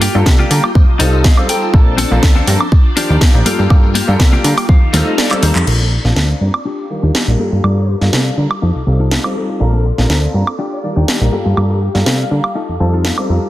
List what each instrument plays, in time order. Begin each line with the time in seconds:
Already playing: string machine A#3 F4 G5
0.01 clean electric guitar A#3 F4 G4, open hi-hat, tambourine
0.14 analog synth bass G2, grand piano G3 A#3 D4 F4 A4, tambourine
0.26 analog synth bass C3, muted clean electric guitar stroke, kick, snare, tambourine
0.39 clean electric guitar A#3 F4 G4
0.51 analog synth bass D3, grand piano G3 A#3 D4 F4 A#4, open hi-hat, tambourine
0.63 tambourine, high woodblock
0.75 analog synth bass F2, string machine D#5 A5, kick, tambourine
0.89 analog synth bass C2
0.99 analog synth bass C2, grand piano G3 C4 D#4 F4 A4, clean electric guitar D#4 F4 A4 D#5, open hi-hat, tambourine
1.13 tambourine
1.24 clean electric guitar F5, kick, snare
1.37 grand piano G3 C4 D#4 F4 A4, tambourine, high woodblock
1.49 grand piano G3 C4 D#4 F4 A4, clean electric guitar G5, muted clean electric guitar stroke, open hi-hat, tambourine
1.62 muted clean electric guitar stroke, tambourine
1.73 analog synth bass A#1, grand piano F3 A#3 C4 D4 A4, string machine D4 C5, kick, tambourine
1.98 clean electric guitar C4 D4 A4, open hi-hat, tambourine
2.11 analog synth bass A#1, grand piano F3 A#3 C4 D4 A4, tambourine
2.23 analog synth bass D2, kick, snare
2.35 clean electric guitar C4 D4 A4
2.46 analog synth bass G2, grand piano F3 A#3 C4 D4 A#4, open hi-hat, tambourine
2.60 tambourine, high woodblock
2.71 string machine F4 D5 G5, kick, tambourine
2.96 grand piano D#3 F3 A#3 D4 G4, clean electric guitar D4 F4 G4, open hi-hat, tambourine
3.10 analog synth bass D#2, tambourine
3.21 kick, snare, tambourine
3.34 analog synth bass A#1, grand piano F3 A#3 D4 D#4 G4, tambourine
3.45 analog synth bass G2, grand piano G3 A#3 D4 F4 A4, string machine A#3 G5, clean electric guitar A#3 F4 G4, open hi-hat, tambourine
3.59 analog synth bass G2, tambourine
3.70 analog synth bass G2, grand piano G3 A#3 D4 F4 A4, kick, tambourine, high woodblock
3.83 tambourine
3.94 clean electric guitar A#3 F4 G4, open hi-hat, tambourine
4.07 analog synth bass G2, grand piano G3 A#3 D4 F4 A4, tambourine
4.20 analog synth bass C3, muted clean electric guitar stroke, kick, snare
4.32 clean electric guitar A#3 F4 G4, tambourine
4.44 analog synth bass D3, grand piano G3 A#3 D4 F4 A#4, clean electric guitar F5, open hi-hat, tambourine
4.57 clean electric guitar G5, open hi-hat, tambourine, high woodblock
4.69 analog synth bass F2, string machine D#4 A4 F5, clean electric guitar F5, kick, tambourine
4.82 analog synth bass D#2
4.93 analog synth bass D#2, grand piano G3 C4 D#4 F4 A4, clean electric guitar A3 D#4 F4, snare, open hi-hat, tambourine
5.07 clean electric guitar D#5, tambourine
5.18 clean electric guitar D5, snare, tambourine
5.30 grand piano G3 C4 D#4 F4 A4, clap, tambourine, high woodblock
5.42 analog synth bass D#2, grand piano G3 C4 D#4 F4 A4, clean electric guitar C5, muted clean electric guitar stroke, open hi-hat, tambourine
5.55 analog synth bass F2, muted clean electric guitar stroke, clap, tambourine
5.66 analog synth bass A#1, grand piano A#3 C4 D4 F4 A4, horn section A#4, string machine D5 A5 C6, muted clean electric guitar stroke, crash
5.80 muted clean electric guitar stroke
5.91 muted clean electric guitar stroke
6.04 analog synth bass A#1, grand piano A#3 C4 D4 F4 A5, snare
6.16 analog synth bass D2, snare
6.41 analog synth bass G2, grand piano A#3 C4 D4 F4 A#4, horn section D5
6.54 high woodblock
6.65 clean electric guitar D4 F4 G4, string machine G4 F5 D6
6.90 grand piano D#3 G3 D4 F4 A#4
7.03 analog synth bass D#2, clean electric guitar D4 F4 G4
7.15 snare
7.27 analog synth bass A#1, grand piano G3 D4 D#4 F4 A#4
7.39 analog synth bass G2, grand piano G3 A#3 D4 F4 A4, clean electric guitar A#3 F4 G4, string machine F5
7.52 analog synth bass G2
7.64 analog synth bass G2, grand piano G3 A#3 D4 F4 A4, horn section D5, high woodblock
7.77 muted clean electric guitar stroke
7.88 muted clean electric guitar stroke
8.01 analog synth bass G2, grand piano G3 A#3 D4 F4 A4, snare
8.13 analog synth bass C3, snare
8.37 analog synth bass D3, grand piano G3 A#3 D4 F4 A#4
8.51 high woodblock
8.62 analog synth bass F2, clean electric guitar D#4 F4 A4, string machine A4 D#6
8.75 analog synth bass C2
8.86 analog synth bass C2, grand piano G3 C4 D#4 F4 A4
9.00 clean electric guitar D#4 F4 A4
9.12 snare
9.24 grand piano G3 C4 D#4 F4 A4, high woodblock
9.36 grand piano G3 C4 D#4 F4 A4
9.49 muted clean electric guitar stroke
9.60 analog synth bass A#1, grand piano A#3 C4 D4 F4 A4, horn section A#4, string machine D5 C6, muted clean electric guitar stroke
9.73 muted clean electric guitar stroke
9.85 muted clean electric guitar stroke
9.98 analog synth bass A#1, grand piano A#3 C4 D4 F4 A4, horn section A#4, snare
10.10 analog synth bass D2, snare
10.34 analog synth bass G2, grand piano A#3 C4 D4 F4 A#4
10.47 high woodblock
10.59 clean electric guitar D4 F4 G4, string machine G4 F5 D6
10.72 horn section D5
10.83 grand piano D#3 G3 D4 F4 A#4
10.96 analog synth bass D#2, clean electric guitar D4 F4 G4
11.08 snare
11.21 analog synth bass A#1, grand piano G3 D4 D#4 F4 A#4
11.32 analog synth bass G2, grand piano G3 A#3 D4 F4 A4, clean electric guitar A#3 F4 G4
11.46 analog synth bass G2
11.57 analog synth bass G2, grand piano G3 A#3 D4 F4 A4, high woodblock
11.70 muted clean electric guitar stroke
11.81 muted clean electric guitar stroke
11.94 analog synth bass G2, grand piano G3 A#3 D4 F4 A4, horn section F5, snare
12.06 analog synth bass C3, snare
12.31 analog synth bass D3, grand piano G3 A#3 D4 F4 A#4
12.44 high woodblock
12.55 clean electric guitar D#4 F4 A4, string machine A4 D#6
12.69 analog synth bass F2
12.80 analog synth bass F2, grand piano G3 C4 D#4 F4 A4, clean electric guitar A5
12.93 clean electric guitar D#4 F4 A4
13.05 clean electric guitar F5, snare
13.17 grand piano G3 C4 D#4 F4 A4, high woodblock
13.29 analog synth bass F2, grand piano G3 C4 D#4 F4 A4
13.42 muted clean electric guitar stroke